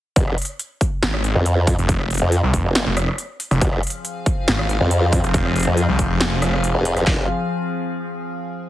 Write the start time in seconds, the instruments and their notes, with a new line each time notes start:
0.16 wobble bass F1, kick, closed hi-hat
0.28 cross-stick
0.38 closed hi-hat
0.42 closed hi-hat
0.45 closed hi-hat
0.59 closed hi-hat
0.81 kick, closed hi-hat
1.03 detuned saw bass G#1, snare, closed hi-hat
1.14 cross-stick
1.24 closed hi-hat
1.35 wobble bass F2
1.46 closed hi-hat
1.67 kick, open hi-hat
1.79 detuned saw bass F1, closed hi-hat
1.89 kick, closed hi-hat
2.00 cross-stick
2.10 closed hi-hat
2.14 closed hi-hat
2.18 closed hi-hat
2.22 wobble bass F2
2.32 closed hi-hat
2.43 detuned saw bass C2
2.54 detuned saw bass F1, kick, closed hi-hat
2.65 wobble bass F1
2.75 snare, closed hi-hat
2.86 detuned saw bass F1
2.97 cross-stick, closed hi-hat
3.08 cross-stick
3.18 closed hi-hat
3.40 open hi-hat
3.51 detuned saw bass F1, cross-stick, closed hi-hat
3.61 wobble bass F1, ambient pad F3 C4 G#4 F5, kick, closed hi-hat
3.73 cross-stick
3.83 closed hi-hat
3.87 closed hi-hat
3.90 closed hi-hat
4.05 closed hi-hat
4.26 kick, closed hi-hat
4.48 detuned saw bass G#1, snare, closed hi-hat
4.59 cross-stick
4.69 closed hi-hat
4.81 wobble bass F2
4.91 closed hi-hat
5.13 kick, open hi-hat
5.24 detuned saw bass F1, closed hi-hat
5.34 kick, closed hi-hat
5.45 cross-stick
5.56 closed hi-hat
5.59 closed hi-hat
5.63 closed hi-hat
5.67 wobble bass F2
5.77 closed hi-hat
5.89 detuned saw bass C2
5.99 detuned saw bass F1, kick, closed hi-hat
6.10 detuned saw bass F1
6.21 snare, closed hi-hat
6.42 cross-stick, closed hi-hat
6.53 cross-stick
6.64 closed hi-hat
6.75 wobble bass F1
6.85 open hi-hat
6.97 wobble bass F1, cross-stick, closed hi-hat
7.07 wobble bass F1, kick, snare, clap